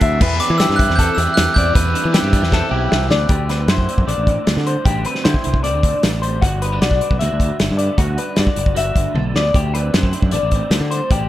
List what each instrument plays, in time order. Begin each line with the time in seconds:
Already playing: clean electric guitar A2 D3 A3 C4 F#4
0.01 clean electric guitar D2 E5, fingered electric bass D2, overdriven electric guitar A3 C4 F#4, kick, closed hi-hat
0.20 clean electric guitar E2 B3 B4, fingered electric bass E2, overdriven electric guitar E3 G3 C4 E4, kick, crash
0.40 clean electric guitar D4, glockenspiel D6, closed hi-hat
0.49 fingered electric bass E3, clean electric guitar E4
0.58 overdriven electric guitar E3 G3 C4 E4, clean electric guitar E3 C4 G4, glockenspiel E6, snare, closed hi-hat
0.69 fingered electric bass G2, snare
0.76 overdriven electric guitar C4 E4, clean electric guitar E4, glockenspiel F#6, kick, closed hi-hat
0.81 overdriven electric guitar G3
0.90 fingered electric bass E2, snare
0.96 overdriven electric guitar E3 G3 C4, clean electric guitar C4 A4, glockenspiel G6, kick, closed hi-hat
1.00 overdriven electric guitar E4
1.15 clean electric guitar E2 E4 G4, fingered electric bass E2, overdriven electric guitar C4 E4, glockenspiel E6, closed hi-hat
1.19 overdriven electric guitar G3
1.34 glockenspiel F#6, snare, closed hi-hat
1.38 fingered electric bass E2
1.53 fingered electric bass E2, overdriven electric guitar G3 C4 E4, clean electric guitar C4, glockenspiel G6, kick, closed hi-hat
1.58 clean electric guitar D5
1.73 clean electric guitar E2 B3 B4, fingered electric bass E2, overdriven electric guitar E3 G3 C4 E4, kick, closed hi-hat
1.93 clean electric guitar D4, closed hi-hat
2.03 fingered electric bass E3, clean electric guitar E4
2.12 overdriven electric guitar E3 G3 C4 E4, clean electric guitar E3 C4 G4, snare, closed hi-hat
2.23 fingered electric bass G2
2.31 overdriven electric guitar G3 C4 E4, clean electric guitar D4, kick, closed hi-hat
2.42 fingered electric bass E2, clean electric guitar E4, snare
2.50 overdriven electric guitar E3 G3 C4 E4, clean electric guitar C4 A4, kick, snare
2.69 fingered electric bass B1, clean electric guitar E2 E4 G4, overdriven electric guitar G3 C4 E4
2.90 fingered electric bass C2, clean electric guitar F#2, snare
3.08 fingered electric bass D2, clean electric guitar E2 D5, overdriven electric guitar G3 C4 E4, snare
3.28 clean electric guitar D2 D4 G4, fingered electric bass D2, kick, closed hi-hat
3.49 clean electric guitar C4 B4, snare, closed hi-hat
3.68 fingered electric bass F#2, clean electric guitar D3 E4 C5, snare, closed hi-hat
3.78 kick
3.88 clean electric guitar C4, closed hi-hat
3.98 fingered electric bass F#2, kick
4.06 fingered electric bass A1, clean electric guitar D4 D5, closed hi-hat
4.18 fingered electric bass A1
4.26 clean electric guitar A2 C4, kick, closed hi-hat
4.46 fingered electric bass D2, clean electric guitar D4, snare, closed hi-hat
4.57 fingered electric bass D3, snare
4.66 clean electric guitar G3 C5, closed hi-hat
4.84 fingered electric bass A1, clean electric guitar D2 D4 G4, kick, closed hi-hat
5.04 clean electric guitar C4 B4, closed hi-hat
5.15 snare
5.23 clean electric guitar D3 E4 C5, fingered electric bass D3, snare, closed hi-hat
5.34 kick
5.44 fingered electric bass C2, clean electric guitar C4, closed hi-hat
5.54 kick
5.64 clean electric guitar D4 D5, closed hi-hat
5.74 fingered electric bass D2
5.83 fingered electric bass D2, clean electric guitar A2 C4, kick, closed hi-hat
6.03 fingered electric bass A1, clean electric guitar D4, snare, closed hi-hat
6.22 clean electric guitar G3 C5, closed hi-hat
6.42 fingered electric bass G1, clean electric guitar G2 F#4, kick, closed hi-hat
6.62 clean electric guitar B3 B4, closed hi-hat
6.72 clean electric guitar D4
6.81 fingered electric bass B1, clean electric guitar D3 F#4 D5, snare, closed hi-hat
6.91 kick
7.01 clean electric guitar D4, closed hi-hat
7.11 fingered electric bass B1, kick
7.19 fingered electric bass D2, clean electric guitar F#4 E5, closed hi-hat
7.33 fingered electric bass D2
7.40 clean electric guitar D2 D4, kick, closed hi-hat
7.59 fingered electric bass G1, clean electric guitar A4, snare, closed hi-hat
7.71 fingered electric bass G2
7.78 clean electric guitar B3 D5, closed hi-hat
7.98 fingered electric bass D2, clean electric guitar G2 F#4, kick, closed hi-hat
8.18 clean electric guitar D4 B4, closed hi-hat
8.36 fingered electric bass G2, clean electric guitar D3 F#4 D5, snare, closed hi-hat
8.47 kick
8.56 fingered electric bass F#1, clean electric guitar D4, closed hi-hat
8.66 kick
8.74 clean electric guitar F#4 E5, closed hi-hat
8.87 fingered electric bass G1
8.94 fingered electric bass G1, clean electric guitar D2 D4, kick, closed hi-hat
9.14 fingered electric bass B1, clean electric guitar A4, high tom
9.35 fingered electric bass D2, clean electric guitar B3 D5, snare
9.54 clean electric guitar D2 D4 G4, fingered electric bass D2, kick, closed hi-hat
9.74 clean electric guitar C4 B4, closed hi-hat
9.93 fingered electric bass F#2, clean electric guitar D3 D4 C5, snare, closed hi-hat
10.03 clean electric guitar E4, kick
10.13 clean electric guitar C4, closed hi-hat
10.22 fingered electric bass F#2, kick
10.31 fingered electric bass A1, clean electric guitar D4 D5, closed hi-hat
10.43 fingered electric bass A1
10.51 clean electric guitar A2 C4, kick, closed hi-hat
10.70 fingered electric bass D2, clean electric guitar D4, snare, closed hi-hat
10.81 fingered electric bass D3
10.91 clean electric guitar G3 C5, closed hi-hat
11.10 fingered electric bass A1, clean electric guitar D2 D4 G4, kick, closed hi-hat